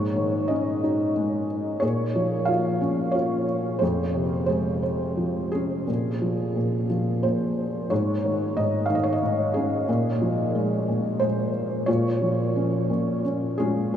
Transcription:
0.00 1.78 G#2 soft
0.00 0.80 G#4 soft
0.00 0.51 C#5 medium
0.16 1.45 D#3 soft
0.48 1.78 C#4 soft
0.48 1.11 D#5 medium
0.84 1.80 D#4 soft
1.16 1.80 G#3 soft
1.80 3.78 A#2 soft
1.80 2.77 G#4 soft
1.80 2.49 C#5 medium
2.15 3.45 F3 soft
2.45 3.13 F4 soft
2.45 3.16 F5 medium
2.81 3.79 C#4 soft
3.11 3.80 F4 soft
3.11 3.82 C#5 medium
3.79 5.84 F2 soft
3.79 4.48 G#4 soft
3.79 4.45 C5 medium
4.14 5.49 C3 soft
4.46 5.84 G#3 soft
4.46 5.50 G#4 soft
4.46 4.81 C5 medium
4.83 5.85 C5 soft
5.17 5.85 F3 soft
5.52 6.87 C#4 soft
5.52 6.86 G#4 medium
5.87 6.55 A#2 soft
6.22 6.88 F3 soft
6.56 7.23 A#2 soft
6.89 7.87 F3 soft
7.23 7.89 A#2 soft
7.23 7.86 C5 medium
7.90 8.55 G#2 soft
7.90 8.87 G#4 soft
7.90 8.59 C#5 medium
8.24 8.88 D#3 soft
8.57 9.22 G#2 soft
8.57 8.86 D#5 medium
8.86 8.96 F5 medium
8.90 9.85 D#3 soft
8.95 9.05 D#5 medium
9.04 9.13 C#5 medium
9.13 9.22 D#5 medium
9.23 9.86 G#2 soft
9.54 11.17 C#4 soft
9.54 11.25 G#4 medium
9.89 10.87 A#2 medium
10.22 11.51 F3 soft
10.55 11.20 G#3 soft
10.89 11.85 A#2 soft
11.20 11.86 G#3 soft
11.20 11.89 C5 medium
11.86 12.88 A#2 soft
11.86 13.21 F4 soft
11.86 13.20 C#5 medium
12.22 13.56 F3 soft
12.56 13.23 C#4 soft
12.90 13.91 A#2 soft
13.25 13.58 C#4 soft
13.58 13.97 G#3 soft
13.58 13.97 C#4 soft
13.58 13.97 F4 soft
13.58 13.97 G#4 medium

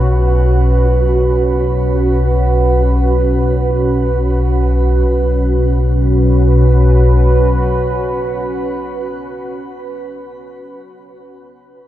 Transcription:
0.00 5.08 B1 medium
0.00 5.08 B2 medium
0.00 5.07 C#4 medium
0.00 5.09 F#4 medium
0.00 5.10 F#4 medium
0.00 5.09 B4 medium
5.09 9.51 B1 medium
5.09 9.50 B2 medium
5.09 9.50 C#4 medium
5.25 9.66 F#4 medium
5.46 9.87 B4 medium

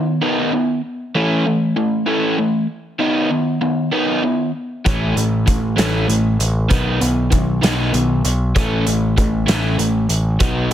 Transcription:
0.00 0.19 D#3 medium
0.00 0.19 B3 medium
0.21 0.51 D#3 medium
0.21 0.51 B3 medium
0.21 0.51 D#4 medium
0.53 0.81 D#3 medium
0.53 0.81 B3 medium
1.15 1.44 E3 medium
1.15 1.44 A3 medium
1.15 1.45 C#4 medium
1.45 1.73 E3 medium
1.45 1.74 A3 medium
1.76 2.04 E3 medium
1.76 2.04 A3 medium
2.06 2.36 E3 medium
2.06 2.36 A3 medium
2.06 2.37 C#4 medium
2.38 2.66 E3 medium
2.38 2.66 A3 medium
2.99 3.28 D#3 medium
2.99 3.29 B3 medium
2.99 3.29 D#4 medium
3.30 3.58 D#3 medium
3.30 3.58 B3 medium
3.61 3.89 D#3 medium
3.61 3.89 B3 medium
3.92 4.21 D#3 medium
3.92 4.21 B3 medium
3.92 4.22 D#4 medium
4.23 4.51 D#3 medium
4.23 4.51 B3 medium
4.85 5.15 A1 medium
4.85 5.14 E3 medium
4.85 5.14 A3 medium
4.85 5.14 C#4 medium
4.85 kick loud
4.85 closed hi-hat medium
5.16 5.45 A1 medium
5.16 5.43 E3 medium
5.16 5.44 A3 medium
5.16 closed hi-hat soft
5.46 5.77 A1 medium
5.46 5.74 E3 medium
5.46 5.75 A3 medium
5.46 kick medium
5.46 closed hi-hat medium
5.76 6.07 A1 medium
5.76 6.06 E3 medium
5.76 6.06 A3 medium
5.76 6.06 C#4 medium
5.76 snare medium
5.76 closed hi-hat medium
6.08 6.38 A1 medium
6.08 6.36 E3 medium
6.08 6.36 A3 medium
6.08 closed hi-hat medium
6.39 6.69 A1 medium
6.39 closed hi-hat medium
6.69 7.00 B1 medium
6.69 6.99 D#3 medium
6.69 6.99 B3 medium
6.69 7.00 D#4 medium
6.69 kick loud
6.69 closed hi-hat medium
7.01 7.30 B1 medium
7.01 7.28 D#3 medium
7.01 7.29 B3 medium
7.01 closed hi-hat medium
7.31 7.62 B1 medium
7.31 7.59 D#3 medium
7.31 7.59 B3 medium
7.31 kick medium
7.31 closed hi-hat medium
7.62 7.92 B1 medium
7.62 7.91 D#3 medium
7.62 7.92 B3 medium
7.62 7.92 D#4 medium
7.62 snare medium
7.62 closed hi-hat medium
7.94 8.23 B1 medium
7.94 8.21 D#3 medium
7.94 8.21 B3 medium
7.94 closed hi-hat medium
8.24 8.54 B1 medium
8.24 closed hi-hat medium
8.55 8.85 A1 medium
8.55 8.84 E3 medium
8.55 8.84 A3 medium
8.55 8.85 C#4 medium
8.55 kick loud
8.55 closed hi-hat medium
8.86 9.16 A1 medium
8.86 9.14 E3 soft
8.86 9.14 A3 medium
8.86 closed hi-hat medium
9.17 9.47 A1 medium
9.17 9.45 E3 medium
9.17 9.45 A3 medium
9.17 kick medium
9.17 closed hi-hat soft
9.46 9.77 A1 medium
9.46 9.76 E3 medium
9.46 9.76 A3 medium
9.46 9.77 C#4 medium
9.46 snare medium
9.46 closed hi-hat medium
9.78 10.08 A1 medium
9.78 10.06 E3 medium
9.78 10.06 A3 medium
9.78 closed hi-hat medium
10.09 10.38 A1 medium
10.09 closed hi-hat medium
10.39 10.70 B1 medium
10.39 10.69 F#3 medium
10.39 10.69 B3 medium
10.39 10.69 D#4 medium
10.39 kick loud
10.39 closed hi-hat medium

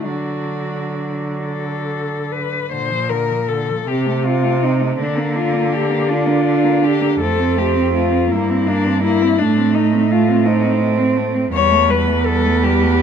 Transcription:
0.04 2.48 D3 soft
0.04 2.51 F#3 soft
0.04 1.43 D4 medium
0.04 2.07 F#4 soft
1.44 2.34 A4 medium
2.32 2.72 B4 medium
2.72 3.84 A#2 medium
2.72 2.91 D3 medium
2.72 3.11 C5 medium
2.90 3.11 F3 soft
3.09 3.30 D3 medium
3.09 3.50 A#4 medium
3.29 3.49 F3 soft
3.49 3.70 D3 soft
3.49 3.89 A4 medium
3.69 3.87 F3 soft
3.87 4.98 C3 medium
3.87 5.02 C4 medium
3.87 4.07 C4 medium
3.87 4.26 G4 medium
4.06 4.27 A3 medium
4.25 4.45 C4 medium
4.25 4.64 F4 medium
4.43 4.62 A3 medium
4.62 4.82 C4 soft
4.62 4.99 D#4 medium
4.81 4.99 A3 soft
4.99 7.17 D3 medium
4.99 6.11 A#3 medium
4.99 5.37 D4 medium
4.99 5.19 D4 medium
5.17 5.37 A#3 medium
5.35 5.55 D4 medium
5.35 5.74 F4 medium
5.53 5.71 A#3 medium
5.71 5.91 D4 medium
5.71 6.11 G4 medium
5.90 6.10 A#3 medium
6.08 6.27 D4 medium
6.08 7.22 D4 medium
6.08 6.85 F4 medium
6.26 6.45 A#3 soft
6.45 6.65 D4 medium
6.64 6.83 A#3 medium
6.82 7.02 D4 medium
6.82 7.20 G4 medium
7.01 7.18 A#3 medium
7.19 8.33 F2 medium
7.19 7.40 A3 medium
7.19 8.31 C4 medium
7.19 7.60 A4 medium
7.38 7.58 C4 medium
7.56 7.77 A3 medium
7.56 7.94 G4 medium
7.75 7.93 C4 medium
7.93 8.13 A3 medium
7.93 8.32 F4 medium
8.11 8.30 C4 medium
8.30 9.43 G2 medium
8.30 8.51 A#3 medium
8.30 9.41 A#3 medium
8.30 8.69 E4 medium
8.50 8.69 C4 medium
8.67 8.88 A#3 medium
8.67 9.03 D4 medium
8.86 9.04 C4 medium
9.04 9.23 A#3 medium
9.04 9.40 E4 loud
9.22 9.39 C4 medium
9.39 11.53 A2 medium
9.39 10.47 A3 medium
9.39 9.59 A3 medium
9.39 9.76 D4 medium
9.58 9.76 C4 medium
9.75 9.95 A3 medium
9.75 10.13 D#4 medium
9.93 10.10 C4 medium
10.10 10.30 A3 medium
10.10 10.48 F4 medium
10.28 10.47 C4 medium
10.45 10.65 A3 medium
10.45 11.51 C4 medium
10.45 10.82 D#4 medium
10.63 10.80 C4 medium
10.81 11.00 A3 medium
10.98 11.18 C4 medium
11.17 11.36 A3 medium
11.34 11.52 C4 medium
11.52 13.02 E2 medium
11.52 11.73 G3 medium
11.52 13.02 B3 medium
11.52 11.92 C#5 loud
11.71 11.90 A3 medium
11.89 12.09 G3 medium
11.89 12.27 B4 medium
12.07 12.25 A3 medium
12.26 12.47 G3 medium
12.26 12.66 A4 loud
12.45 12.65 A3 medium
12.63 12.84 G3 medium
12.63 13.02 G4 medium
12.83 13.00 A3 medium

